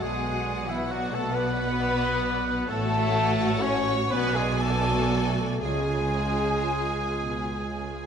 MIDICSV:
0, 0, Header, 1, 9, 480
1, 0, Start_track
1, 0, Tempo, 899550
1, 12, Time_signature, 6, 3, 24, 8
1, 1932, Tempo, 1001669
1, 2892, Tempo, 1060071
1, 3996, End_track
2, 0, Start_track
2, 0, Title_t, "Flute"
2, 0, Program_c, 0, 73
2, 14, Note_on_c, 0, 80, 91
2, 376, Note_on_c, 0, 76, 77
2, 384, Note_off_c, 0, 80, 0
2, 482, Note_on_c, 0, 78, 87
2, 490, Note_off_c, 0, 76, 0
2, 610, Note_on_c, 0, 81, 81
2, 618, Note_off_c, 0, 78, 0
2, 724, Note_on_c, 0, 83, 97
2, 732, Note_off_c, 0, 81, 0
2, 1281, Note_off_c, 0, 83, 0
2, 1442, Note_on_c, 0, 81, 109
2, 1926, Note_on_c, 0, 85, 109
2, 1934, Note_off_c, 0, 81, 0
2, 2165, Note_on_c, 0, 83, 108
2, 2172, Note_off_c, 0, 85, 0
2, 2279, Note_on_c, 0, 80, 96
2, 2286, Note_off_c, 0, 83, 0
2, 2397, Note_on_c, 0, 81, 104
2, 2405, Note_off_c, 0, 80, 0
2, 2743, Note_off_c, 0, 81, 0
2, 2885, Note_on_c, 0, 80, 92
2, 3996, Note_off_c, 0, 80, 0
2, 3996, End_track
3, 0, Start_track
3, 0, Title_t, "Violin section"
3, 0, Program_c, 1, 48
3, 0, Note_on_c, 1, 78, 77
3, 1416, Note_off_c, 1, 78, 0
3, 1431, Note_on_c, 1, 78, 96
3, 2142, Note_off_c, 1, 78, 0
3, 2166, Note_on_c, 1, 80, 98
3, 2883, Note_off_c, 1, 80, 0
3, 2889, Note_on_c, 1, 80, 81
3, 3996, Note_off_c, 1, 80, 0
3, 3996, End_track
4, 0, Start_track
4, 0, Title_t, "Viola section"
4, 0, Program_c, 2, 48
4, 0, Note_on_c, 2, 66, 67
4, 11, Note_on_c, 2, 74, 70
4, 123, Note_off_c, 2, 74, 0
4, 133, Note_on_c, 2, 78, 63
4, 250, Note_on_c, 2, 74, 67
4, 252, Note_off_c, 2, 78, 0
4, 370, Note_off_c, 2, 74, 0
4, 374, Note_on_c, 2, 78, 66
4, 491, Note_off_c, 2, 78, 0
4, 491, Note_on_c, 2, 74, 66
4, 609, Note_off_c, 2, 74, 0
4, 611, Note_on_c, 2, 78, 69
4, 728, Note_off_c, 2, 78, 0
4, 730, Note_on_c, 2, 74, 74
4, 846, Note_off_c, 2, 74, 0
4, 849, Note_on_c, 2, 78, 72
4, 965, Note_off_c, 2, 78, 0
4, 965, Note_on_c, 2, 74, 75
4, 1078, Note_on_c, 2, 78, 71
4, 1082, Note_off_c, 2, 74, 0
4, 1197, Note_on_c, 2, 74, 81
4, 1199, Note_off_c, 2, 78, 0
4, 1318, Note_off_c, 2, 74, 0
4, 1318, Note_on_c, 2, 78, 77
4, 1416, Note_off_c, 2, 66, 0
4, 1427, Note_on_c, 2, 66, 90
4, 1429, Note_on_c, 2, 73, 89
4, 1439, Note_off_c, 2, 78, 0
4, 2140, Note_off_c, 2, 66, 0
4, 2141, Note_off_c, 2, 73, 0
4, 2164, Note_on_c, 2, 66, 95
4, 2164, Note_on_c, 2, 74, 94
4, 2876, Note_off_c, 2, 74, 0
4, 2877, Note_off_c, 2, 66, 0
4, 2888, Note_on_c, 2, 68, 80
4, 2891, Note_on_c, 2, 65, 74
4, 3996, Note_off_c, 2, 65, 0
4, 3996, Note_off_c, 2, 68, 0
4, 3996, End_track
5, 0, Start_track
5, 0, Title_t, "Cor anglais"
5, 0, Program_c, 3, 69
5, 12, Note_on_c, 3, 68, 82
5, 364, Note_off_c, 3, 68, 0
5, 367, Note_on_c, 3, 64, 80
5, 489, Note_on_c, 3, 66, 81
5, 497, Note_off_c, 3, 64, 0
5, 609, Note_on_c, 3, 69, 92
5, 617, Note_off_c, 3, 66, 0
5, 720, Note_on_c, 3, 71, 101
5, 728, Note_off_c, 3, 69, 0
5, 1437, Note_off_c, 3, 71, 0
5, 1440, Note_on_c, 3, 69, 105
5, 1932, Note_on_c, 3, 73, 101
5, 1939, Note_off_c, 3, 69, 0
5, 2096, Note_off_c, 3, 73, 0
5, 2165, Note_on_c, 3, 71, 111
5, 2288, Note_on_c, 3, 68, 96
5, 2295, Note_off_c, 3, 71, 0
5, 2409, Note_on_c, 3, 69, 98
5, 2416, Note_off_c, 3, 68, 0
5, 2749, Note_off_c, 3, 69, 0
5, 2896, Note_on_c, 3, 68, 88
5, 3996, Note_off_c, 3, 68, 0
5, 3996, End_track
6, 0, Start_track
6, 0, Title_t, "Violin section"
6, 0, Program_c, 4, 48
6, 6, Note_on_c, 4, 68, 86
6, 360, Note_off_c, 4, 68, 0
6, 363, Note_on_c, 4, 64, 75
6, 486, Note_off_c, 4, 64, 0
6, 487, Note_on_c, 4, 66, 85
6, 606, Note_on_c, 4, 69, 86
6, 607, Note_off_c, 4, 66, 0
6, 719, Note_on_c, 4, 71, 105
6, 725, Note_off_c, 4, 69, 0
6, 1433, Note_on_c, 4, 69, 107
6, 1436, Note_off_c, 4, 71, 0
6, 1918, Note_off_c, 4, 69, 0
6, 1931, Note_on_c, 4, 73, 115
6, 2164, Note_off_c, 4, 73, 0
6, 2167, Note_on_c, 4, 71, 117
6, 2285, Note_off_c, 4, 71, 0
6, 2285, Note_on_c, 4, 68, 95
6, 2399, Note_on_c, 4, 69, 100
6, 2405, Note_off_c, 4, 68, 0
6, 2888, Note_off_c, 4, 69, 0
6, 2888, Note_on_c, 4, 68, 91
6, 3996, Note_off_c, 4, 68, 0
6, 3996, End_track
7, 0, Start_track
7, 0, Title_t, "French horn section"
7, 0, Program_c, 5, 60
7, 0, Note_on_c, 5, 56, 104
7, 349, Note_on_c, 5, 52, 91
7, 359, Note_off_c, 5, 56, 0
7, 468, Note_on_c, 5, 54, 97
7, 479, Note_off_c, 5, 52, 0
7, 597, Note_off_c, 5, 54, 0
7, 597, Note_on_c, 5, 57, 98
7, 705, Note_on_c, 5, 59, 123
7, 721, Note_off_c, 5, 57, 0
7, 1429, Note_off_c, 5, 59, 0
7, 1436, Note_on_c, 5, 57, 127
7, 1920, Note_off_c, 5, 57, 0
7, 1922, Note_on_c, 5, 61, 125
7, 2093, Note_off_c, 5, 61, 0
7, 2164, Note_on_c, 5, 59, 127
7, 2282, Note_off_c, 5, 59, 0
7, 2286, Note_on_c, 5, 56, 112
7, 2403, Note_on_c, 5, 57, 95
7, 2406, Note_off_c, 5, 56, 0
7, 2445, Note_off_c, 5, 57, 0
7, 2450, Note_on_c, 5, 59, 97
7, 2487, Note_on_c, 5, 57, 94
7, 2489, Note_off_c, 5, 59, 0
7, 2528, Note_off_c, 5, 57, 0
7, 2533, Note_on_c, 5, 59, 89
7, 2571, Note_off_c, 5, 59, 0
7, 2573, Note_on_c, 5, 57, 91
7, 2612, Note_off_c, 5, 57, 0
7, 2619, Note_on_c, 5, 59, 86
7, 2655, Note_off_c, 5, 59, 0
7, 2659, Note_on_c, 5, 57, 84
7, 2693, Note_on_c, 5, 59, 87
7, 2695, Note_off_c, 5, 57, 0
7, 2724, Note_on_c, 5, 57, 99
7, 2733, Note_off_c, 5, 59, 0
7, 2887, Note_off_c, 5, 57, 0
7, 2896, Note_on_c, 5, 56, 112
7, 3996, Note_off_c, 5, 56, 0
7, 3996, End_track
8, 0, Start_track
8, 0, Title_t, "Cello section"
8, 0, Program_c, 6, 48
8, 15, Note_on_c, 6, 47, 86
8, 1436, Note_on_c, 6, 45, 97
8, 1441, Note_off_c, 6, 47, 0
8, 2144, Note_off_c, 6, 45, 0
8, 2161, Note_on_c, 6, 47, 94
8, 2890, Note_off_c, 6, 47, 0
8, 2893, Note_on_c, 6, 49, 82
8, 3551, Note_off_c, 6, 49, 0
8, 3613, Note_on_c, 6, 47, 73
8, 3837, Note_off_c, 6, 47, 0
8, 3855, Note_on_c, 6, 49, 61
8, 3996, Note_off_c, 6, 49, 0
8, 3996, End_track
9, 0, Start_track
9, 0, Title_t, "Double bass section"
9, 0, Program_c, 7, 48
9, 13, Note_on_c, 7, 35, 74
9, 1439, Note_on_c, 7, 33, 89
9, 1440, Note_off_c, 7, 35, 0
9, 2145, Note_off_c, 7, 33, 0
9, 2163, Note_on_c, 7, 35, 94
9, 2891, Note_off_c, 7, 35, 0
9, 2894, Note_on_c, 7, 37, 70
9, 3996, Note_off_c, 7, 37, 0
9, 3996, End_track
0, 0, End_of_file